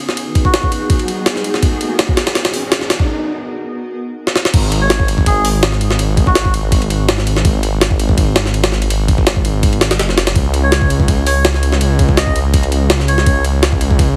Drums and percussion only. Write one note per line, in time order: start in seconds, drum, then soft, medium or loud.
0.09 snare medium
0.17 ride medium
0.35 kick medium
0.35 ride medium
0.45 kick medium
0.54 snare loud
0.54 ride medium
0.63 kick medium
0.72 ride medium
0.90 kick loud
0.90 ride medium
0.99 ride soft
1.08 ride medium
1.26 snare loud
1.26 ride medium
1.36 snare soft
1.44 ride medium
1.54 snare medium
1.63 kick loud
1.63 ride medium
1.81 ride medium
1.99 snare loud
1.99 ride medium
2.09 kick medium
2.17 snare loud
2.17 ride medium
2.27 snare loud
2.27 ride medium
2.35 snare loud
2.35 ride medium
2.45 snare loud
2.45 ride medium
2.54 open hi-hat medium
2.72 snare loud
2.72 ride medium
2.81 snare soft
2.90 snare loud
2.90 ride medium
3.00 kick medium
4.27 snare medium
4.36 snare medium
4.45 snare medium
4.54 kick loud
4.54 crash medium
4.54 ride medium
4.72 ride medium
4.90 snare loud
4.90 ride medium
5.00 kick medium
5.08 ride medium
5.18 kick medium
5.26 kick loud
5.26 ride medium
5.45 open hi-hat medium
5.63 snare loud
5.63 ride medium
5.72 snare soft
5.81 ride medium
5.91 snare medium
5.99 ride medium
6.17 kick loud
6.17 ride medium
6.27 kick loud
6.35 snare loud
6.35 ride medium
6.45 kick medium
6.54 ride medium
6.72 kick loud
6.72 ride medium
6.82 ride soft
6.90 ride medium
7.09 snare loud
7.09 ride medium
7.18 snare soft
7.27 ride medium
7.36 snare medium
7.45 kick loud
7.45 ride medium
7.63 ride medium
7.81 snare loud
7.81 ride medium
7.91 kick medium
8.00 ride medium
8.09 kick loud
8.18 kick loud
8.18 ride medium
8.36 snare loud
8.36 ride medium
8.46 snare soft
8.54 ride medium
8.64 snare loud
8.64 ride medium
8.72 snare soft
8.82 ride medium
8.90 ride medium
9.08 kick loud
9.08 ride medium
9.18 kick loud
9.27 snare loud
9.27 ride medium
9.36 kick medium
9.45 ride medium
9.63 kick loud
9.63 ride medium
9.73 ride soft
9.81 snare loud
9.81 ride medium
9.91 snare loud
9.91 ride medium
9.99 snare loud
9.99 ride medium
10.09 snare soft
10.18 snare loud
10.18 ride medium
10.27 snare loud
10.27 ride medium
10.36 kick loud
10.36 ride medium
10.54 ride medium
10.72 snare loud
10.72 ride medium
10.82 kick medium
10.90 ride medium
11.00 kick medium
11.08 kick loud
11.08 ride medium
11.27 open hi-hat medium
11.45 snare loud
11.45 ride medium
11.54 snare soft
11.63 ride medium
11.72 snare medium
11.81 ride medium
11.99 kick medium
11.99 ride medium
12.09 kick medium
12.17 snare loud
12.17 ride medium
12.27 kick medium
12.36 ride medium
12.54 kick loud
12.54 ride medium
12.63 ride soft
12.72 ride medium
12.90 snare loud
12.90 ride medium
13.00 snare soft
13.08 ride medium
13.18 snare medium
13.26 kick loud
13.26 ride medium
13.45 ride medium
13.63 snare loud
13.63 ride medium
13.72 kick medium
13.81 ride medium
13.91 kick medium
13.99 kick loud
13.99 ride medium